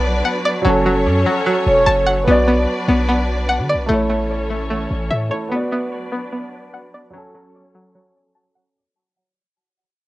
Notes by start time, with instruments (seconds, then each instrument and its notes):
Already playing: 808-style bass B1, string section F#3 D4 B4 D5, grand piano B3 F#4 D5, synth pluck B3
0.25 synth pluck F#5
0.45 synth pluck D5
0.62 808-style bass F#1, grand piano F#3 C#4, synth pluck F#3, string section C#4 A4 C#5
0.69 grand piano A4
0.86 synth pluck F#3
1.06 808-style bass F#2
1.26 synth pluck F#3
1.46 synth pluck F#3
1.66 808-style bass E1, soft synth lead C#5
1.86 808-style bass F#1, synth pluck A5
2.06 synth pluck F#5
2.24 808-style bass B1, string section F#3 D4 B4 D5, grand piano B3 F#4, synth pluck B3
2.31 grand piano D5
2.48 synth pluck B3
2.88 808-style bass B1, synth pluck B3
3.09 synth pluck B3
3.49 synth pluck F#5
3.59 808-style bass D3
3.69 synth pluck D5
3.74 808-style bass B1
3.86 808-style bass A1, string section E3 C#4 A4 C#5, grand piano A3 E4, synth pluck A3
3.93 grand piano C#5
4.10 synth pluck A3
4.50 synth pluck A3
4.70 synth pluck A3
4.91 808-style bass A1
5.10 808-style bass A2, synth pluck E5
5.29 grand piano A3 E4 C#5, synth pluck C#5
5.48 string section F#3 D4 B4 D5, grand piano B3 F#4, synth pluck B3
5.55 grand piano D5
5.72 synth pluck B3
6.12 synth pluck B3
6.32 synth pluck B3
6.74 synth pluck F#5
6.94 synth pluck D5
7.10 grand piano F#3 C#4, synth pluck F#3, string section F#3 C#4 A4 C#5
7.17 grand piano A4
7.35 synth pluck F#3
7.75 synth pluck F#3
7.95 synth pluck F#3
8.35 synth pluck A5
8.55 synth pluck F#5